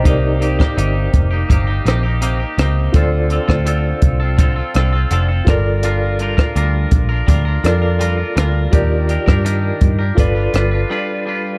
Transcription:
<<
  \new Staff \with { instrumentName = "Reed electric piano" } { \time 4/4 \key c \dorian \tempo 4 = 83 << { <c'' ees''>16 r2. r8. | r1 | r1 | r1 | } \\ { <ees' g' bes' d''>1 | <f' a' c'' d''>2.~ <f' a' c'' d''>8 <f' a' bes' d''>8~ | <f' a' bes' d''>2~ <f' a' bes' d''>8 <f' a' bes' d''>4. | <f' g' bes' d''>2 <f' a' b' d''>2 | } >> }
  \new Staff \with { instrumentName = "Clean electric guitar" } { \time 4/4 \key c \dorian <c bes ees' g'>8 <c bes ees' g'>16 <bes ees' g'>16 <c bes ees' g'>8. <bes ees' g'>16 <c bes ees' g'>16 <bes ees' g'>16 <c bes ees' g'>16 <bes ees' g'>16 <c bes ees' g'>16 <bes ees' g'>16 <c bes ees' g'>8 | <d c' f' a'>8 <d c' f' a'>16 <c' f' a'>16 <d c' f' a'>8. <c' f' a'>16 <d c' f' a'>16 <c' f' a'>16 <d c' f' a'>16 <c' f' a'>16 <d c' f' a'>16 <c' f' a'>16 <g d' f' bes'>8 | <g d' f' bes'>8 <g d' f' bes'>16 <d' f' bes'>16 <g d' f' bes'>8. <d' f' bes'>16 <g d' f' bes'>16 <d' f' bes'>16 <g d' f' bes'>16 <d' f' bes'>16 <g d' f' bes'>16 <d' f' bes'>16 <g d' f' bes'>8 | <ees d' g' bes'>8 <ees d' g' bes'>16 <d' g' bes'>16 <ees d' g' bes'>8. <d' g' bes'>16 <g d' f' b'>16 <d' f' b'>16 <g d' f' b'>16 <d' f' b'>16 <g d' f' b'>8 <g d' f' b'>8 | }
  \new Staff \with { instrumentName = "Picked electric bass" } { \clef bass \time 4/4 \key c \dorian c,4 g,,8 f,,8 g,,8 bes,,4 des,8 | d,8. d,8. c,4 c,8 f,,8 g,,8~ | g,,4 d,8 bes,,8 d,8 f,4 d,8 | ees,8. g,8. g,8 g,,8 g,,8 r4 | }
  \new DrumStaff \with { instrumentName = "Drums" } \drummode { \time 4/4 <hh bd>8 hh16 <bd ss>16 hh8 <hh bd>8 <hh bd>8 <hh ss>8 hh8 <hh ss>8 | <hh bd>8 hh16 <bd ss>16 hh8 <hh bd>8 <hh bd>8 <hh ss>8 hh8 <hh bd ss>8 | hh8 hh16 <bd ss>16 hh8 <hh bd>8 <hh bd>8 <hh ss>8 hh8 <hh ss>8 | <hh bd>8 hh16 <bd ss>16 hh8 <hh bd>8 <hh bd>8 <hh ss>8 r4 | }
>>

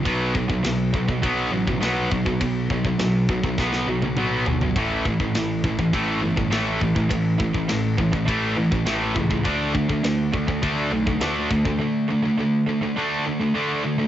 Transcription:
<<
  \new Staff \with { instrumentName = "Distorted electric guitar" } { \clef bass \time 4/4 \key b \dorian \tempo 4 = 102 <b, fis b>8 <b, fis>16 <b, fis>16 <b, fis>8 <b, fis>16 <b, fis>16 <b, fis b>8 <b, fis>16 <b, fis>16 <b, fis b>8 <b, fis>16 <b, fis>16 | <b, fis>8 <b, fis>16 <b, fis>16 <b, fis>8 <b, fis>16 <b, fis>16 <b, fis b>8 <b, fis>16 <b, fis>16 <b, fis b>8 <b, fis>16 <b, fis>16 | <a, e a>8 <a, e>16 <a, e>16 <a, e>8 <a, e>16 <a, e>16 <a, e a>8 <a, e>16 <a, e>16 <a, e a>8 <a, e>16 <a, e>16 | <a, e>8 <a, e>16 <a, e>16 <a, e>8 <a, e>16 <a, e>16 <a, e a>8 <a, e>16 <a, e>16 <a, e a>8 <a, e>16 <a, e>16 |
<d a d'>8 <d a>16 <d a>16 <d a>8 <d a>16 <d a>16 <d a d'>8 <d a>16 <d a>16 <d a d'>8 <d a>16 <d a>16 | <d a>8 <d a>16 <d a>16 <d a>8 <d a>16 <d a>16 <d a d'>8 <d a>16 <d a>16 <d a d'>8 <d a>16 <d a>16 | }
  \new Staff \with { instrumentName = "Distorted electric guitar" } { \clef bass \time 4/4 \key b \dorian <b, fis b>8 <b, fis>16 <b, fis>16 <b, fis>8 <b, fis>16 <b, fis>16 <b, fis b>8 <b, fis>16 <b, fis>16 <b, fis b>8 <b, fis>16 <b, fis>16 | <b, fis>8 <b, fis>16 <b, fis>16 <b, fis>8 <b, fis>16 <b, fis>16 <b, fis b>8 <b, fis>16 <b, fis>16 <b, fis b>8 <b, fis>16 <b, fis>16 | <a, e a>8 <a, e>16 <a, e>16 <a, e>8 <a, e>16 <a, e>16 <a, e a>8 <a, e>16 <a, e>16 <a, e a>8 <a, e>16 <a, e>16 | <a, e>8 <a, e>16 <a, e>16 <a, e>8 <a, e>16 <a, e>16 <a, e a>8 <a, e>16 <a, e>16 <a, e a>8 <a, e>16 <a, e>16 |
<d a d'>8 <d a>16 <d a>16 <d a>8 <d a>16 <d a>16 <d a d'>8 <d a>16 <d a>16 <d a d'>8 <d a>16 <d a>16 | <d a>8 <d a>16 <d a>16 <d a>8 <d a>16 <d a>16 <d a d'>8 <d a>16 <d a>16 <d a d'>8 <d a>16 <d a>16 | }
  \new Staff \with { instrumentName = "Picked electric bass" } { \clef bass \time 4/4 \key b \dorian b,,8 b,,8 b,,8 b,,8 b,,8 a,,8 b,,8 b,,8 | b,,8 b,,8 b,,8 b,,8 b,,8 b,,8 b,,8 g,,8 | a,,8 a,,8 a,,8 a,,8 a,,8 g,,8 a,,8 a,,8 | a,,8 a,,8 a,,8 a,,8 a,,8 a,,8 a,,8 cis,8 |
d,8 d,8 d,8 d,8 d,8 b,,8 d,8 d,8 | r1 | }
  \new DrumStaff \with { instrumentName = "Drums" } \drummode { \time 4/4 <bd rb>8 bd16 bd16 <rb sn>8 bd16 bd16 <bd rb>8. bd16 <rb sn>8 bd16 bd16 | <bd rb>8 bd16 bd16 <rb sn>8 bd16 bd16 <bd sn>16 sn8 tommh16 toml8 tomfh16 tomfh16 | <bd rb>8 bd16 bd16 <rb sn>8 bd16 bd16 <bd rb>8. bd16 <rb sn>8 bd16 bd16 | <bd rb>8 bd16 bd16 <rb sn>8 bd16 bd16 <bd rb>8. bd16 <rb sn>8 bd16 bd16 |
<bd rb>8 bd16 bd16 <rb sn>8 bd16 bd16 <bd rb>8. bd16 <rb sn>8 bd16 bd16 | r4 r4 r4 r4 | }
>>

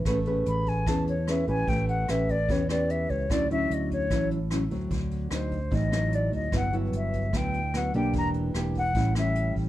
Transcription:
<<
  \new Staff \with { instrumentName = "Flute" } { \time 4/4 \key a \major \tempo 4 = 148 r4 b''8 gis''8 a''8 cis''8 e''8 gis''8 | g''8 fis''8 e''8 d''8 cis''8 d''8 e''8 cis''8 | d''8 e''8 dis''8 cis''4 r4. | r4 c''4 ees''4 d''8 ees''8 |
fis''8 r8 e''4 g''4 fis''8 g''8 | bes''8 r4 fis''4 e''4 r8 | }
  \new Staff \with { instrumentName = "Nylon-string guitar" } { \time 4/4 \key a \major << { <cis' gis' b'>8 <cis' gis' b'>4. <cis' gis' b'>8 r8 <cis' gis' b'>8 <cis' g' b'>8~ | <cis' g' b'>4 <cis' g' b'>8 r8 <cis' g' b'>8 <cis' g' b'>4. | <fis cis' e'>8 <fis cis' e'>4. <fis cis' e'>8 r8 <fis cis' e'>8 <fis c'>8~ | <fis c'>4 <fis c' ees'>8 r8 <fis c' ees'>8 <fis c' ees'>4. |
<fis b e'>8 <fis b e'>4. <fis b e'>8 r8 <fis b e'>8 <bes d' g'>8~ | <bes d' g'>4 <bes d' g'>8 r8 <g cis' e'>8 <g cis' e'>4. | } \\ { a2 e2 | a2 e2 | d2 a,2 | d2 a,2 |
g,2 d2 | e2 a,2 | } >> }
  \new Staff \with { instrumentName = "Fingered electric bass" } { \clef bass \time 4/4 \key a \major a,,4 a,,4 e,4. a,,8 | a,,4 a,,4 e,4. cis,8 | d,4 d,4 a,,4. d,8 | d,4 d,4 a,,4. d,8 |
g,,4 g,,4 d,4. b,,8 | e,,4 e,,4 a,,4. a,,8 | }
  \new DrumStaff \with { instrumentName = "Drums" } \drummode { \time 4/4 <hh bd ss>8 hh8 hh8 <hh bd>8 <hh bd ss>8 hh8 <hh ss>8 <hh bd>8 | <hh bd>8 hh8 <hh ss>8 <hh bd>8 <hh bd>8 <hh ss>8 hh8 <hh bd>8 | <hh bd ss>8 hh8 hh8 <hh bd>8 <hh bd ss>8 hh8 <hh ss>8 <hh bd>8 | <hh bd>8 hh8 <hh ss>8 <hh bd>8 <hh bd>8 <hh ss>8 hh8 <hh bd>8 |
<hh bd ss>8 hh8 hh8 <hh bd>8 <hh bd ss>8 hh8 <hh ss>8 <hh bd>8 | <hh bd>8 hh8 <hh ss>8 <hh bd>8 <hh bd>8 <hh ss>8 hh8 <hh bd>8 | }
>>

